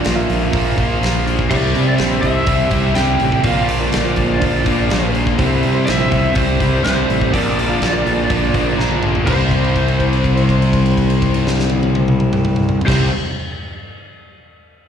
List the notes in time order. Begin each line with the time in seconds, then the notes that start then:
Already playing: A#2 F3 A#3 F4 A#4 D5
0.04 A#1 D3 F3 A#3 F4, snare, open hi-hat
0.16 F4 A#4 E5
0.29 A#1 F3 A#3 F4, open hi-hat
0.51 A#1 A#2 F3 A#3, kick, open hi-hat
0.78 A#1 F3 A#3 F4, kick, open hi-hat
1.03 A#1, snare, open hi-hat
1.26 F3 A#3 F4, open hi-hat
1.39 kick
1.49 C2 C3 G3 C4 E4 G4 C5 D5 E5, kick, crash
1.75 C3, open hi-hat
1.87 G4 C5 E5
1.98 A#1 C3 G3 C4 E4, snare, open hi-hat
2.10 G4 C5 E5
2.22 C2 C4 E4 E5, kick, open hi-hat
2.26 G3
2.46 C2 C3 G3 C4, kick, open hi-hat
2.70 C2 C3 G3 C4 E4 G4, kick, open hi-hat
2.95 C2 C3 G3 C4 E4 G4 G5, snare, open hi-hat
3.20 A1 G3 C4 E4, open hi-hat
3.32 kick
3.44 A#1 A#2 D3 F3 A#3 D4 F4 A#4 D5 F5, kick, open hi-hat
3.68 D5, open hi-hat
3.80 F4 A#4 D5
3.93 A#1 D3 F3 A#3 F4, snare, open hi-hat
4.05 F4 A#4 C5
4.16 A#1 F3 A#3 F4, kick, open hi-hat
4.42 A#1 A#2 F3 A#3, kick, open hi-hat
4.65 A#1 A#2 D3 F3 A#3 D4 F4, kick, open hi-hat
4.89 A#1 A#2 D3 F3 A#3 D4, snare, open hi-hat
5.13 F3 A#3 F4, open hi-hat
5.27 kick
5.37 C2 C3 G3 C4 E4 G4 C5, kick, open hi-hat
5.63 C3, open hi-hat
5.75 E4 G4 C5
5.86 A#1 C3 G3 C4 E4 E5, snare, open hi-hat
6.00 E4 G4 C5
6.12 C2 G3 C4 E4, kick, open hi-hat
6.35 C2 C3 G3 C4 C5, kick, open hi-hat
6.60 C2 C3 G3 C4 E4, kick, open hi-hat
6.83 C2 C3 G3 C4 E4 C5, snare, open hi-hat
7.09 A1 G3 C4 E4, open hi-hat
7.21 kick
7.32 A#1 A#2 D3 F3 A#3 D4 F4 A#4 D5, kick, open hi-hat
7.59 open hi-hat
7.69 F4 A#4 F5
7.81 A#1 D3 F3 A#3 D4, snare, open hi-hat
7.93 F4 A#4 D5
8.05 A#1 F3 A#3 D4, open hi-hat
8.29 A#1 A#2 F3 A#3, kick, open hi-hat
8.53 A#1 A#2 D3 F3 A#3 D4 F5, kick, open hi-hat
8.76 A#1 A#2 D3 F3 A#3 D4 A#5, snare
8.91 high tom
9.02 F3 A#3 D4, mid tom
9.15 floor tom
9.26 C2 C3 G3 C4 E4 G4 C5, kick, crash
9.30 C5
9.51 kick, crash
9.64 crash
9.76 kick, crash
9.88 crash
10.00 kick, crash
10.13 crash
10.24 kick, crash
10.37 crash
10.49 kick, crash
10.62 crash
10.73 kick, crash
10.86 crash
10.97 kick, crash
11.10 crash
11.22 kick, crash
11.34 crash
11.47 snare
11.59 snare
11.70 high tom
11.83 high tom
11.95 high tom
12.08 mid tom
12.20 mid tom
12.33 mid tom
12.45 mid tom
12.56 mid tom
12.69 floor tom
12.81 E4, floor tom
12.86 C2 C3 G3 C4 E4 G4 C5, kick, crash
12.90 snare